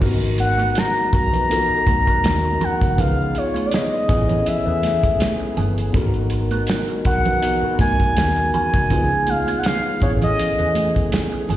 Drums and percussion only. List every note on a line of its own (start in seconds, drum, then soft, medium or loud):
0.02 kick medium
0.02 crash medium
0.02 low conga medium
0.38 closed hi-hat medium
0.38 muted conga soft
0.58 closed hi-hat medium
0.58 high conga medium
0.75 snare loud
0.75 closed hi-hat medium
0.75 muted conga soft
1.13 kick loud
1.13 closed hi-hat medium
1.33 closed hi-hat soft
1.33 low conga medium
1.50 closed hi-hat medium
1.50 muted conga soft
1.87 kick loud
1.87 closed hi-hat medium
1.87 high conga medium
2.07 kick medium
2.07 closed hi-hat medium
2.24 snare loud
2.24 closed hi-hat loud
2.24 muted conga soft
2.24 high conga medium
2.61 closed hi-hat medium
2.61 low conga medium
2.81 kick medium
2.81 closed hi-hat medium
2.98 kick loud
2.98 closed hi-hat medium
2.98 muted conga soft
2.98 low conga medium
3.35 closed hi-hat medium
3.54 closed hi-hat medium
3.54 high conga medium
3.71 snare loud
3.71 closed hi-hat medium
3.71 muted conga soft
4.08 kick loud
4.08 closed hi-hat medium
4.08 muted conga soft
4.29 closed hi-hat soft
4.29 low conga medium
4.46 closed hi-hat medium
4.46 muted conga soft
4.83 snare soft
4.83 closed hi-hat medium
4.83 high conga medium
5.04 kick loud
5.04 closed hi-hat medium
5.20 snare loud
5.20 closed hi-hat loud
5.20 high conga medium
5.57 closed hi-hat medium
5.57 muted conga soft
5.57 low conga medium
5.78 closed hi-hat medium
5.94 kick loud
5.94 closed hi-hat medium
5.94 muted conga soft
5.94 low conga medium
6.14 closed hi-hat soft
6.30 closed hi-hat medium
6.51 closed hi-hat medium
6.51 high conga medium
6.67 snare loud
6.67 closed hi-hat loud
6.67 muted conga soft
6.88 closed hi-hat soft
7.05 kick medium
7.05 closed hi-hat medium
7.25 closed hi-hat soft
7.25 low conga medium
7.42 closed hi-hat loud
7.79 kick loud
7.79 snare soft
7.79 closed hi-hat medium
7.79 muted conga soft
7.79 high conga medium
8.00 kick medium
8.00 closed hi-hat medium
8.17 snare loud
8.17 closed hi-hat loud
8.17 muted conga soft
8.17 high conga medium
8.36 closed hi-hat soft
8.54 closed hi-hat medium
8.54 muted conga soft
8.54 low conga medium
8.74 kick medium
8.74 closed hi-hat medium
8.90 kick medium
8.90 closed hi-hat medium
8.90 low conga medium
9.27 closed hi-hat medium
9.27 muted conga soft
9.27 high conga medium
9.47 closed hi-hat medium
9.47 high conga medium
9.63 snare loud
9.63 closed hi-hat loud
9.63 muted conga soft
10.00 kick loud
10.00 closed hi-hat medium
10.00 muted conga soft
10.22 closed hi-hat medium
10.22 low conga medium
10.39 closed hi-hat medium
10.59 closed hi-hat soft
10.75 closed hi-hat medium
10.75 high conga medium
10.96 kick medium
10.96 closed hi-hat medium
11.12 snare loud
11.12 closed hi-hat loud
11.12 muted conga soft
11.12 high conga medium
11.33 closed hi-hat soft
11.49 closed hi-hat medium
11.49 muted conga soft
11.49 low conga medium